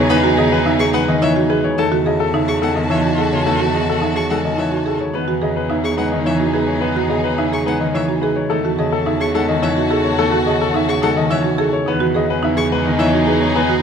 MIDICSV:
0, 0, Header, 1, 7, 480
1, 0, Start_track
1, 0, Key_signature, 4, "major"
1, 0, Tempo, 560748
1, 80, Time_signature, 3, 2, 24, 8
1, 11832, End_track
2, 0, Start_track
2, 0, Title_t, "Violin"
2, 0, Program_c, 0, 40
2, 83, Note_on_c, 0, 83, 77
2, 172, Note_off_c, 0, 83, 0
2, 682, Note_on_c, 0, 85, 77
2, 771, Note_off_c, 0, 85, 0
2, 800, Note_on_c, 0, 78, 78
2, 890, Note_off_c, 0, 78, 0
2, 1046, Note_on_c, 0, 76, 80
2, 1134, Note_off_c, 0, 76, 0
2, 1527, Note_on_c, 0, 81, 72
2, 1614, Note_off_c, 0, 81, 0
2, 2125, Note_on_c, 0, 85, 67
2, 2213, Note_off_c, 0, 85, 0
2, 2250, Note_on_c, 0, 78, 68
2, 2336, Note_off_c, 0, 78, 0
2, 2491, Note_on_c, 0, 76, 66
2, 2577, Note_off_c, 0, 76, 0
2, 2967, Note_on_c, 0, 81, 57
2, 3055, Note_off_c, 0, 81, 0
2, 3563, Note_on_c, 0, 85, 60
2, 3652, Note_off_c, 0, 85, 0
2, 3682, Note_on_c, 0, 78, 64
2, 3771, Note_off_c, 0, 78, 0
2, 3926, Note_on_c, 0, 76, 59
2, 4014, Note_off_c, 0, 76, 0
2, 5005, Note_on_c, 0, 85, 62
2, 5093, Note_off_c, 0, 85, 0
2, 5119, Note_on_c, 0, 78, 63
2, 5210, Note_off_c, 0, 78, 0
2, 5362, Note_on_c, 0, 76, 67
2, 5451, Note_off_c, 0, 76, 0
2, 6446, Note_on_c, 0, 85, 64
2, 6534, Note_off_c, 0, 85, 0
2, 6569, Note_on_c, 0, 78, 64
2, 6656, Note_off_c, 0, 78, 0
2, 6805, Note_on_c, 0, 76, 68
2, 6893, Note_off_c, 0, 76, 0
2, 7883, Note_on_c, 0, 85, 68
2, 7972, Note_off_c, 0, 85, 0
2, 8002, Note_on_c, 0, 78, 71
2, 8092, Note_off_c, 0, 78, 0
2, 8242, Note_on_c, 0, 76, 76
2, 8331, Note_off_c, 0, 76, 0
2, 9322, Note_on_c, 0, 85, 72
2, 9411, Note_off_c, 0, 85, 0
2, 9438, Note_on_c, 0, 78, 73
2, 9529, Note_off_c, 0, 78, 0
2, 9678, Note_on_c, 0, 76, 78
2, 9768, Note_off_c, 0, 76, 0
2, 10761, Note_on_c, 0, 85, 74
2, 10851, Note_off_c, 0, 85, 0
2, 11123, Note_on_c, 0, 76, 78
2, 11212, Note_off_c, 0, 76, 0
2, 11832, End_track
3, 0, Start_track
3, 0, Title_t, "Grand piano"
3, 0, Program_c, 1, 0
3, 0, Note_on_c, 1, 73, 84
3, 85, Note_on_c, 1, 71, 110
3, 117, Note_off_c, 1, 73, 0
3, 238, Note_off_c, 1, 71, 0
3, 328, Note_on_c, 1, 75, 90
3, 448, Note_on_c, 1, 71, 100
3, 479, Note_off_c, 1, 75, 0
3, 565, Note_on_c, 1, 76, 84
3, 599, Note_off_c, 1, 71, 0
3, 718, Note_off_c, 1, 76, 0
3, 805, Note_on_c, 1, 71, 99
3, 927, Note_on_c, 1, 75, 85
3, 958, Note_off_c, 1, 71, 0
3, 1043, Note_on_c, 1, 73, 82
3, 1078, Note_off_c, 1, 75, 0
3, 1197, Note_off_c, 1, 73, 0
3, 1281, Note_on_c, 1, 71, 80
3, 1404, Note_on_c, 1, 73, 76
3, 1436, Note_off_c, 1, 71, 0
3, 1529, Note_on_c, 1, 69, 96
3, 1557, Note_off_c, 1, 73, 0
3, 1679, Note_off_c, 1, 69, 0
3, 1769, Note_on_c, 1, 75, 76
3, 1884, Note_on_c, 1, 69, 90
3, 1919, Note_off_c, 1, 75, 0
3, 2006, Note_on_c, 1, 76, 73
3, 2037, Note_off_c, 1, 69, 0
3, 2158, Note_off_c, 1, 76, 0
3, 2241, Note_on_c, 1, 69, 81
3, 2360, Note_on_c, 1, 75, 74
3, 2396, Note_off_c, 1, 69, 0
3, 2481, Note_on_c, 1, 73, 70
3, 2516, Note_off_c, 1, 75, 0
3, 2636, Note_off_c, 1, 73, 0
3, 2727, Note_on_c, 1, 69, 66
3, 2845, Note_on_c, 1, 73, 62
3, 2879, Note_off_c, 1, 69, 0
3, 2963, Note_on_c, 1, 69, 81
3, 2998, Note_off_c, 1, 73, 0
3, 3117, Note_off_c, 1, 69, 0
3, 3207, Note_on_c, 1, 75, 71
3, 3334, Note_on_c, 1, 69, 81
3, 3359, Note_off_c, 1, 75, 0
3, 3453, Note_on_c, 1, 76, 60
3, 3481, Note_off_c, 1, 69, 0
3, 3601, Note_off_c, 1, 76, 0
3, 3694, Note_on_c, 1, 69, 76
3, 3809, Note_on_c, 1, 75, 65
3, 3841, Note_off_c, 1, 69, 0
3, 3930, Note_on_c, 1, 73, 65
3, 3959, Note_off_c, 1, 75, 0
3, 4079, Note_off_c, 1, 73, 0
3, 4170, Note_on_c, 1, 69, 61
3, 4286, Note_on_c, 1, 73, 60
3, 4320, Note_off_c, 1, 69, 0
3, 4407, Note_on_c, 1, 71, 80
3, 4438, Note_off_c, 1, 73, 0
3, 4558, Note_off_c, 1, 71, 0
3, 4646, Note_on_c, 1, 75, 71
3, 4764, Note_on_c, 1, 71, 78
3, 4798, Note_off_c, 1, 75, 0
3, 4880, Note_on_c, 1, 76, 67
3, 4917, Note_off_c, 1, 71, 0
3, 5036, Note_off_c, 1, 76, 0
3, 5114, Note_on_c, 1, 71, 77
3, 5237, Note_on_c, 1, 75, 65
3, 5274, Note_off_c, 1, 71, 0
3, 5353, Note_on_c, 1, 73, 69
3, 5395, Note_off_c, 1, 75, 0
3, 5513, Note_off_c, 1, 73, 0
3, 5596, Note_on_c, 1, 71, 63
3, 5714, Note_on_c, 1, 73, 65
3, 5754, Note_off_c, 1, 71, 0
3, 5830, Note_on_c, 1, 71, 84
3, 5874, Note_off_c, 1, 73, 0
3, 5992, Note_off_c, 1, 71, 0
3, 6075, Note_on_c, 1, 75, 70
3, 6195, Note_on_c, 1, 71, 86
3, 6234, Note_off_c, 1, 75, 0
3, 6320, Note_on_c, 1, 76, 69
3, 6354, Note_off_c, 1, 71, 0
3, 6476, Note_off_c, 1, 76, 0
3, 6561, Note_on_c, 1, 71, 83
3, 6682, Note_on_c, 1, 75, 70
3, 6716, Note_off_c, 1, 71, 0
3, 6798, Note_on_c, 1, 73, 69
3, 6837, Note_off_c, 1, 75, 0
3, 6955, Note_off_c, 1, 73, 0
3, 7032, Note_on_c, 1, 71, 69
3, 7156, Note_on_c, 1, 73, 66
3, 7193, Note_off_c, 1, 71, 0
3, 7273, Note_on_c, 1, 69, 86
3, 7315, Note_off_c, 1, 73, 0
3, 7434, Note_off_c, 1, 69, 0
3, 7526, Note_on_c, 1, 75, 74
3, 7639, Note_on_c, 1, 69, 91
3, 7678, Note_off_c, 1, 75, 0
3, 7761, Note_on_c, 1, 76, 70
3, 7796, Note_off_c, 1, 69, 0
3, 7916, Note_off_c, 1, 76, 0
3, 8003, Note_on_c, 1, 69, 87
3, 8123, Note_on_c, 1, 75, 74
3, 8157, Note_off_c, 1, 69, 0
3, 8235, Note_on_c, 1, 73, 77
3, 8277, Note_off_c, 1, 75, 0
3, 8394, Note_off_c, 1, 73, 0
3, 8477, Note_on_c, 1, 69, 78
3, 8598, Note_on_c, 1, 73, 74
3, 8635, Note_off_c, 1, 69, 0
3, 8719, Note_on_c, 1, 69, 96
3, 8755, Note_off_c, 1, 73, 0
3, 8876, Note_off_c, 1, 69, 0
3, 8962, Note_on_c, 1, 75, 82
3, 9086, Note_on_c, 1, 69, 90
3, 9117, Note_off_c, 1, 75, 0
3, 9209, Note_on_c, 1, 76, 74
3, 9238, Note_off_c, 1, 69, 0
3, 9359, Note_off_c, 1, 76, 0
3, 9444, Note_on_c, 1, 69, 95
3, 9561, Note_on_c, 1, 75, 82
3, 9597, Note_off_c, 1, 69, 0
3, 9688, Note_on_c, 1, 73, 82
3, 9716, Note_off_c, 1, 75, 0
3, 9839, Note_off_c, 1, 73, 0
3, 9916, Note_on_c, 1, 69, 75
3, 10039, Note_on_c, 1, 73, 77
3, 10075, Note_off_c, 1, 69, 0
3, 10167, Note_on_c, 1, 71, 92
3, 10196, Note_off_c, 1, 73, 0
3, 10319, Note_off_c, 1, 71, 0
3, 10409, Note_on_c, 1, 75, 83
3, 10530, Note_on_c, 1, 71, 92
3, 10559, Note_off_c, 1, 75, 0
3, 10651, Note_on_c, 1, 76, 78
3, 10680, Note_off_c, 1, 71, 0
3, 10800, Note_off_c, 1, 76, 0
3, 10890, Note_on_c, 1, 71, 96
3, 11020, Note_on_c, 1, 75, 78
3, 11040, Note_off_c, 1, 71, 0
3, 11130, Note_on_c, 1, 73, 81
3, 11163, Note_off_c, 1, 75, 0
3, 11279, Note_off_c, 1, 73, 0
3, 11368, Note_on_c, 1, 71, 77
3, 11483, Note_on_c, 1, 73, 73
3, 11519, Note_off_c, 1, 71, 0
3, 11604, Note_on_c, 1, 71, 94
3, 11637, Note_off_c, 1, 73, 0
3, 11757, Note_off_c, 1, 71, 0
3, 11832, End_track
4, 0, Start_track
4, 0, Title_t, "Violin section"
4, 0, Program_c, 2, 48
4, 0, Note_on_c, 2, 63, 91
4, 0, Note_on_c, 2, 68, 93
4, 1365, Note_off_c, 2, 68, 0
4, 1368, Note_off_c, 2, 63, 0
4, 1525, Note_on_c, 2, 81, 82
4, 1528, Note_on_c, 2, 66, 87
4, 4248, Note_off_c, 2, 81, 0
4, 4250, Note_off_c, 2, 66, 0
4, 4394, Note_on_c, 2, 63, 70
4, 4395, Note_on_c, 2, 68, 73
4, 7123, Note_off_c, 2, 63, 0
4, 7123, Note_off_c, 2, 68, 0
4, 7277, Note_on_c, 2, 81, 74
4, 7282, Note_on_c, 2, 66, 77
4, 10004, Note_off_c, 2, 81, 0
4, 10007, Note_off_c, 2, 66, 0
4, 10152, Note_on_c, 2, 63, 88
4, 10155, Note_on_c, 2, 68, 86
4, 11832, Note_off_c, 2, 63, 0
4, 11832, Note_off_c, 2, 68, 0
4, 11832, End_track
5, 0, Start_track
5, 0, Title_t, "Marimba"
5, 0, Program_c, 3, 12
5, 81, Note_on_c, 3, 63, 84
5, 200, Note_on_c, 3, 66, 108
5, 236, Note_off_c, 3, 63, 0
5, 321, Note_on_c, 3, 68, 83
5, 356, Note_off_c, 3, 66, 0
5, 476, Note_off_c, 3, 68, 0
5, 563, Note_on_c, 3, 63, 99
5, 683, Note_on_c, 3, 68, 83
5, 717, Note_off_c, 3, 63, 0
5, 804, Note_on_c, 3, 63, 75
5, 837, Note_off_c, 3, 68, 0
5, 957, Note_off_c, 3, 63, 0
5, 1045, Note_on_c, 3, 64, 80
5, 1165, Note_on_c, 3, 66, 84
5, 1198, Note_off_c, 3, 64, 0
5, 1283, Note_on_c, 3, 68, 94
5, 1318, Note_off_c, 3, 66, 0
5, 1437, Note_off_c, 3, 68, 0
5, 1523, Note_on_c, 3, 63, 74
5, 1640, Note_on_c, 3, 66, 94
5, 1677, Note_off_c, 3, 63, 0
5, 1763, Note_on_c, 3, 68, 75
5, 1796, Note_off_c, 3, 66, 0
5, 1917, Note_off_c, 3, 68, 0
5, 2001, Note_on_c, 3, 63, 91
5, 2124, Note_on_c, 3, 68, 74
5, 2156, Note_off_c, 3, 63, 0
5, 2242, Note_on_c, 3, 63, 66
5, 2277, Note_off_c, 3, 68, 0
5, 2397, Note_off_c, 3, 63, 0
5, 2483, Note_on_c, 3, 64, 71
5, 2602, Note_on_c, 3, 66, 67
5, 2637, Note_off_c, 3, 64, 0
5, 2721, Note_on_c, 3, 68, 77
5, 2757, Note_off_c, 3, 66, 0
5, 2876, Note_off_c, 3, 68, 0
5, 2962, Note_on_c, 3, 63, 62
5, 3081, Note_on_c, 3, 66, 77
5, 3117, Note_off_c, 3, 63, 0
5, 3200, Note_on_c, 3, 68, 62
5, 3236, Note_off_c, 3, 66, 0
5, 3356, Note_off_c, 3, 68, 0
5, 3439, Note_on_c, 3, 63, 77
5, 3558, Note_on_c, 3, 68, 65
5, 3595, Note_off_c, 3, 63, 0
5, 3679, Note_on_c, 3, 63, 59
5, 3715, Note_off_c, 3, 68, 0
5, 3835, Note_off_c, 3, 63, 0
5, 3917, Note_on_c, 3, 64, 64
5, 4036, Note_on_c, 3, 66, 61
5, 4075, Note_off_c, 3, 64, 0
5, 4158, Note_on_c, 3, 68, 73
5, 4195, Note_off_c, 3, 66, 0
5, 4315, Note_off_c, 3, 68, 0
5, 4396, Note_on_c, 3, 63, 61
5, 4517, Note_on_c, 3, 66, 81
5, 4555, Note_off_c, 3, 63, 0
5, 4636, Note_on_c, 3, 68, 63
5, 4675, Note_off_c, 3, 66, 0
5, 4795, Note_off_c, 3, 68, 0
5, 4877, Note_on_c, 3, 63, 83
5, 4996, Note_on_c, 3, 68, 69
5, 5035, Note_off_c, 3, 63, 0
5, 5117, Note_on_c, 3, 63, 63
5, 5155, Note_off_c, 3, 68, 0
5, 5275, Note_off_c, 3, 63, 0
5, 5360, Note_on_c, 3, 64, 67
5, 5477, Note_on_c, 3, 66, 66
5, 5516, Note_off_c, 3, 64, 0
5, 5595, Note_on_c, 3, 68, 81
5, 5635, Note_off_c, 3, 66, 0
5, 5754, Note_off_c, 3, 68, 0
5, 5837, Note_on_c, 3, 63, 64
5, 5959, Note_on_c, 3, 66, 83
5, 5995, Note_off_c, 3, 63, 0
5, 6079, Note_on_c, 3, 68, 67
5, 6116, Note_off_c, 3, 66, 0
5, 6236, Note_off_c, 3, 68, 0
5, 6320, Note_on_c, 3, 63, 82
5, 6441, Note_on_c, 3, 68, 68
5, 6476, Note_off_c, 3, 63, 0
5, 6560, Note_on_c, 3, 63, 68
5, 6596, Note_off_c, 3, 68, 0
5, 6716, Note_off_c, 3, 63, 0
5, 6803, Note_on_c, 3, 64, 69
5, 6921, Note_on_c, 3, 66, 65
5, 6957, Note_off_c, 3, 64, 0
5, 7044, Note_on_c, 3, 68, 87
5, 7076, Note_off_c, 3, 66, 0
5, 7197, Note_off_c, 3, 68, 0
5, 7284, Note_on_c, 3, 63, 65
5, 7401, Note_on_c, 3, 66, 83
5, 7437, Note_off_c, 3, 63, 0
5, 7521, Note_on_c, 3, 68, 69
5, 7556, Note_off_c, 3, 66, 0
5, 7676, Note_off_c, 3, 68, 0
5, 7760, Note_on_c, 3, 63, 82
5, 7880, Note_on_c, 3, 68, 74
5, 7916, Note_off_c, 3, 63, 0
5, 7999, Note_on_c, 3, 63, 69
5, 8036, Note_off_c, 3, 68, 0
5, 8156, Note_off_c, 3, 63, 0
5, 8239, Note_on_c, 3, 64, 74
5, 8357, Note_on_c, 3, 66, 75
5, 8396, Note_off_c, 3, 64, 0
5, 8479, Note_on_c, 3, 68, 87
5, 8515, Note_off_c, 3, 66, 0
5, 8635, Note_off_c, 3, 68, 0
5, 8719, Note_on_c, 3, 63, 67
5, 8836, Note_on_c, 3, 66, 95
5, 8876, Note_off_c, 3, 63, 0
5, 8956, Note_on_c, 3, 68, 73
5, 8995, Note_off_c, 3, 66, 0
5, 9115, Note_off_c, 3, 68, 0
5, 9197, Note_on_c, 3, 63, 97
5, 9314, Note_on_c, 3, 68, 80
5, 9355, Note_off_c, 3, 63, 0
5, 9435, Note_on_c, 3, 63, 69
5, 9474, Note_off_c, 3, 68, 0
5, 9594, Note_off_c, 3, 63, 0
5, 9675, Note_on_c, 3, 64, 76
5, 9794, Note_on_c, 3, 66, 73
5, 9834, Note_off_c, 3, 64, 0
5, 9915, Note_on_c, 3, 68, 94
5, 9954, Note_off_c, 3, 66, 0
5, 10074, Note_off_c, 3, 68, 0
5, 10155, Note_on_c, 3, 63, 70
5, 10276, Note_on_c, 3, 66, 99
5, 10314, Note_off_c, 3, 63, 0
5, 10396, Note_on_c, 3, 68, 77
5, 10435, Note_off_c, 3, 66, 0
5, 10555, Note_off_c, 3, 68, 0
5, 10638, Note_on_c, 3, 63, 95
5, 10759, Note_on_c, 3, 68, 76
5, 10795, Note_off_c, 3, 63, 0
5, 10916, Note_off_c, 3, 68, 0
5, 11119, Note_on_c, 3, 64, 77
5, 11242, Note_on_c, 3, 66, 76
5, 11275, Note_off_c, 3, 64, 0
5, 11357, Note_on_c, 3, 68, 88
5, 11397, Note_off_c, 3, 66, 0
5, 11515, Note_off_c, 3, 68, 0
5, 11601, Note_on_c, 3, 63, 71
5, 11724, Note_on_c, 3, 66, 87
5, 11757, Note_off_c, 3, 63, 0
5, 11832, Note_off_c, 3, 66, 0
5, 11832, End_track
6, 0, Start_track
6, 0, Title_t, "Harp"
6, 0, Program_c, 4, 46
6, 0, Note_on_c, 4, 49, 83
6, 0, Note_on_c, 4, 51, 86
6, 0, Note_on_c, 4, 52, 89
6, 0, Note_on_c, 4, 54, 91
6, 0, Note_on_c, 4, 56, 101
6, 85, Note_on_c, 4, 59, 107
6, 315, Note_off_c, 4, 49, 0
6, 325, Note_on_c, 4, 49, 80
6, 555, Note_off_c, 4, 49, 0
6, 565, Note_on_c, 4, 49, 77
6, 794, Note_off_c, 4, 56, 0
6, 804, Note_on_c, 4, 56, 95
6, 913, Note_off_c, 4, 51, 0
6, 924, Note_on_c, 4, 51, 85
6, 1033, Note_off_c, 4, 52, 0
6, 1043, Note_on_c, 4, 52, 81
6, 1398, Note_off_c, 4, 49, 0
6, 1409, Note_on_c, 4, 49, 77
6, 1526, Note_on_c, 4, 57, 95
6, 1541, Note_off_c, 4, 51, 0
6, 1541, Note_off_c, 4, 52, 0
6, 1542, Note_off_c, 4, 59, 0
6, 1543, Note_off_c, 4, 49, 0
6, 1742, Note_off_c, 4, 54, 0
6, 1764, Note_on_c, 4, 49, 75
6, 1990, Note_off_c, 4, 49, 0
6, 2001, Note_on_c, 4, 49, 71
6, 2231, Note_off_c, 4, 56, 0
6, 2242, Note_on_c, 4, 56, 81
6, 2365, Note_on_c, 4, 51, 74
6, 2488, Note_on_c, 4, 52, 69
6, 2835, Note_off_c, 4, 49, 0
6, 2845, Note_on_c, 4, 49, 65
6, 2955, Note_off_c, 4, 57, 0
6, 2965, Note_on_c, 4, 57, 79
6, 3191, Note_off_c, 4, 49, 0
6, 3201, Note_on_c, 4, 49, 65
6, 3430, Note_off_c, 4, 49, 0
6, 3440, Note_on_c, 4, 49, 62
6, 3675, Note_off_c, 4, 56, 0
6, 3685, Note_on_c, 4, 56, 73
6, 3797, Note_off_c, 4, 51, 0
6, 3807, Note_on_c, 4, 51, 62
6, 3911, Note_off_c, 4, 52, 0
6, 3921, Note_on_c, 4, 52, 63
6, 4272, Note_off_c, 4, 49, 0
6, 4282, Note_on_c, 4, 49, 62
6, 4399, Note_on_c, 4, 59, 82
6, 4420, Note_off_c, 4, 49, 0
6, 4420, Note_off_c, 4, 52, 0
6, 4422, Note_off_c, 4, 57, 0
6, 4423, Note_off_c, 4, 51, 0
6, 4640, Note_on_c, 4, 49, 66
6, 4874, Note_off_c, 4, 49, 0
6, 4885, Note_on_c, 4, 49, 64
6, 5115, Note_off_c, 4, 56, 0
6, 5125, Note_on_c, 4, 56, 80
6, 5247, Note_on_c, 4, 51, 70
6, 5367, Note_on_c, 4, 52, 69
6, 5830, Note_off_c, 4, 59, 0
6, 5840, Note_on_c, 4, 59, 82
6, 6073, Note_off_c, 4, 49, 0
6, 6083, Note_on_c, 4, 49, 63
6, 6313, Note_off_c, 4, 49, 0
6, 6323, Note_on_c, 4, 49, 64
6, 6552, Note_off_c, 4, 56, 0
6, 6562, Note_on_c, 4, 56, 80
6, 6670, Note_off_c, 4, 51, 0
6, 6680, Note_on_c, 4, 51, 69
6, 6790, Note_off_c, 4, 52, 0
6, 6800, Note_on_c, 4, 52, 67
6, 7277, Note_on_c, 4, 57, 85
6, 7299, Note_off_c, 4, 51, 0
6, 7299, Note_off_c, 4, 52, 0
6, 7299, Note_off_c, 4, 59, 0
6, 7301, Note_off_c, 4, 49, 0
6, 7519, Note_on_c, 4, 49, 69
6, 7753, Note_off_c, 4, 49, 0
6, 7763, Note_on_c, 4, 49, 70
6, 7991, Note_off_c, 4, 56, 0
6, 8001, Note_on_c, 4, 56, 80
6, 8122, Note_on_c, 4, 51, 77
6, 8243, Note_on_c, 4, 52, 71
6, 8710, Note_off_c, 4, 57, 0
6, 8720, Note_on_c, 4, 57, 89
6, 8954, Note_off_c, 4, 49, 0
6, 8964, Note_on_c, 4, 49, 76
6, 9193, Note_off_c, 4, 49, 0
6, 9203, Note_on_c, 4, 49, 71
6, 9430, Note_off_c, 4, 56, 0
6, 9441, Note_on_c, 4, 56, 89
6, 9550, Note_off_c, 4, 51, 0
6, 9560, Note_on_c, 4, 51, 77
6, 9671, Note_off_c, 4, 52, 0
6, 9681, Note_on_c, 4, 52, 75
6, 10165, Note_on_c, 4, 59, 97
6, 10179, Note_off_c, 4, 51, 0
6, 10179, Note_off_c, 4, 57, 0
6, 10180, Note_off_c, 4, 52, 0
6, 10181, Note_off_c, 4, 49, 0
6, 10404, Note_on_c, 4, 49, 78
6, 10875, Note_off_c, 4, 56, 0
6, 10886, Note_on_c, 4, 56, 89
6, 11000, Note_on_c, 4, 51, 80
6, 11120, Note_on_c, 4, 52, 75
6, 11595, Note_off_c, 4, 59, 0
6, 11606, Note_on_c, 4, 59, 87
6, 11832, Note_off_c, 4, 49, 0
6, 11832, Note_off_c, 4, 51, 0
6, 11832, Note_off_c, 4, 52, 0
6, 11832, Note_off_c, 4, 56, 0
6, 11832, Note_off_c, 4, 59, 0
6, 11832, End_track
7, 0, Start_track
7, 0, Title_t, "Cello"
7, 0, Program_c, 5, 42
7, 0, Note_on_c, 5, 40, 92
7, 1391, Note_off_c, 5, 40, 0
7, 1527, Note_on_c, 5, 40, 75
7, 4273, Note_off_c, 5, 40, 0
7, 4403, Note_on_c, 5, 40, 68
7, 7151, Note_off_c, 5, 40, 0
7, 7284, Note_on_c, 5, 40, 72
7, 10032, Note_off_c, 5, 40, 0
7, 10161, Note_on_c, 5, 40, 82
7, 11832, Note_off_c, 5, 40, 0
7, 11832, End_track
0, 0, End_of_file